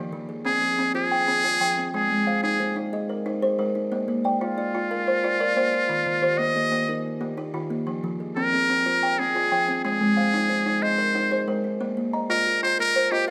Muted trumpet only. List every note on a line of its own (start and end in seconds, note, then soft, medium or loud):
0.46 0.92 G#4 loud
0.95 1.90 G#4 loud
1.95 2.41 G#4 medium
2.43 2.78 G#4 medium
4.41 6.40 F4 medium
6.38 7.04 D#5 loud
8.36 9.20 A#4 medium
9.19 9.84 G#4 loud
9.85 10.84 G#4 medium
10.82 11.48 C5 medium
12.30 12.60 A#4 loud
12.63 12.78 C5 medium
12.80 13.13 A#4 loud
13.11 13.27 G4 loud